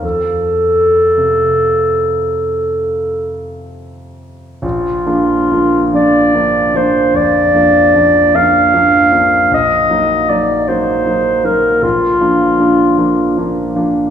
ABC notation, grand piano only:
X:1
M:12/8
L:1/8
Q:3/8=52
K:Bb
V:1 name="Grand piano"
F,,3 C,8- C, | B,,, [F,B,D] [F,B,D] [F,B,D] [F,B,D] [F,B,D] F,, [F,B,D] [F,B,D] [F,B,D] [F,B,D] [F,B,D] | B,,, [_G,B,E] [G,B,E] [G,B,E] [G,B,E] [G,B,E] B,,, [F,B,D] [F,B,D] [F,B,D] [F,B,D] [F,B,D] |]